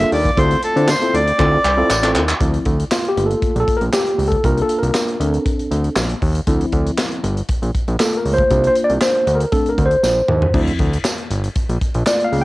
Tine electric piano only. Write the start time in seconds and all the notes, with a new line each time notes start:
0.00 A#3 D4 F4 A4
0.37 C4 E4 F4 A4
0.76 C4 E4 F4 C5
1.01 C4 E4 F4 A4
1.39 C4 E4 F4 A4
1.77 C4 E4 F4 A4
2.03 C4 E4 F4 A4
2.40 F3 C4 E4
2.91 F4
3.08 G4
3.16 A3 A#3 F4
3.26 A4
3.60 A4
3.77 A#4
3.94 G4
4.28 A4
4.44 A#3 D4 F4 A#4
4.62 A4
4.79 A#4
5.20 C4 D4 A4
6.47 F3 C4 E4
7.99 A3 A#3 F4 A4
8.17 A#4
8.34 C5
8.50 A#3 D4 F4
8.67 C5
8.84 D5
9.01 C5
9.35 A#4
9.52 A3 C4 D4 A4
9.69 A#4
9.86 C5
10.54 F3 C4 E4
12.06 A3 A#3 F4 D5
12.24 F5